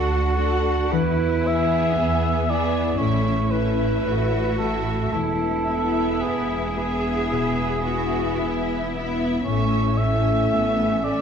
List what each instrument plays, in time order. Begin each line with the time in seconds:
Already playing: double bass section D2, harp D3 A3 D4 F#4, viola section D4, cello section F#4, cor anglais F#4, violin section A4 F#5
0.35 viola section D4, harp D4, violin section A4 F#5
0.91 double bass section E2, harp E3, cello section E4, cor anglais B4
1.42 violin section G#4 E5
1.47 viola section B3, harp B4, cor anglais E5
1.98 double bass section E2, cello section B3, harp G#4
2.47 viola section B3, harp E4, violin section G#4 E5, cor anglais D5
2.97 double bass section A1, harp A2, viola section A3, cello section C#4, violin section E4 E5, cor anglais C#5
3.48 violin section E4 E5, harp E4, cor anglais B4
3.53 viola section A3
4.04 double bass section A1, cello section F#4, harp C#5
4.58 harp A3, viola section A3, violin section E4 E5, cor anglais A4
5.12 double bass section E1, harp E2, cello section E4, cor anglais A4
5.67 viola section B3, violin section E4 E5, harp E4
6.21 double bass section E1, cello section E4, cor anglais G#4, harp B4
6.74 harp B3, viola section B3, violin section E4 E5, cello section G#4
7.31 double bass section E1, harp B2
7.82 viola section B3, violin section E4 E5, harp E4, cello section F#4
8.38 double bass section E1, cello section E4, harp B4
8.91 viola section B3, harp B3, violin section E4 E5
9.45 double bass section A1, harp A2, viola section A3, violin section C#4 E5, cello section C#4, cor anglais C#5
9.98 viola section A3, violin section C#4 E5, harp E4, cor anglais E5
10.52 double bass section A1, cello section B3, harp A4
11.03 cello section A3, viola section A3, violin section C#4 E5, harp C#4, cor anglais D5